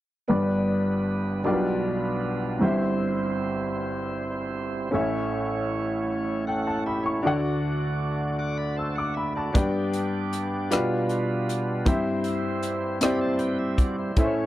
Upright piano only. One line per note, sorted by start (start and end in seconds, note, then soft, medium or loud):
0.28 1.41 G1 soft
0.28 1.41 G2 soft
0.28 1.45 B3 soft
0.28 1.42 D4 soft
0.28 1.44 G4 soft
0.28 1.46 B4 soft
0.28 1.45 D5 medium
1.44 2.57 B1 medium
1.44 2.57 B2 medium
1.44 2.61 D4 medium
1.44 2.61 F4 soft
1.44 2.60 G4 soft
1.44 1.52 A#4 soft
1.44 2.62 D5 medium
1.52 2.65 B4 medium
2.59 4.89 G1 soft
2.59 4.89 G2 soft
2.59 4.88 C4 soft
2.59 4.88 E4 soft
2.59 4.89 G4 soft
2.59 4.89 C5 soft
2.64 4.90 E5 medium
4.91 7.20 A1 soft
4.91 7.20 A2 medium
4.91 7.19 C#4 medium
4.91 7.20 E4 soft
4.91 7.20 A4 soft
4.91 7.21 C#5 soft
4.95 7.21 E5 medium
6.48 6.66 G5 soft
6.67 6.85 A5 soft
6.87 7.05 B5 soft
7.06 7.42 C#6 soft
7.23 9.52 D2 medium
7.23 9.52 D3 medium
7.23 9.51 D4 medium
7.23 9.51 F#4 soft
7.23 9.52 A4 soft
7.23 9.52 D5 soft
7.27 9.53 F#5 medium
8.79 8.97 E6 soft
8.98 9.16 D6 soft
9.17 9.35 B5 soft
9.37 9.73 A5 soft
9.54 10.67 G2 soft
9.54 10.58 D4 medium
9.54 10.58 G4 medium
9.54 10.58 B4 medium
9.54 10.58 D5 medium
9.54 10.59 G5 medium
10.71 11.82 B2 medium
10.71 11.73 F4 medium
10.71 11.74 G4 medium
10.71 11.74 B4 medium
10.71 11.74 D5 medium
10.71 11.74 F5 medium
11.85 12.98 G2 medium
11.85 12.89 C4 medium
11.85 12.89 E4 medium
11.85 12.89 G4 medium
11.85 12.89 C5 medium
11.85 12.90 E5 medium
13.01 14.04 C4 medium
13.01 14.04 E4 medium
13.01 14.05 G4 medium
13.01 14.05 C5 medium
13.01 14.05 D5 medium
14.17 14.46 A2 medium
14.17 14.46 C#4 medium
14.17 14.46 E4 medium
14.17 14.46 A4 medium
14.17 14.24 C5 medium
14.17 14.46 E5 medium
14.25 14.46 C#5 medium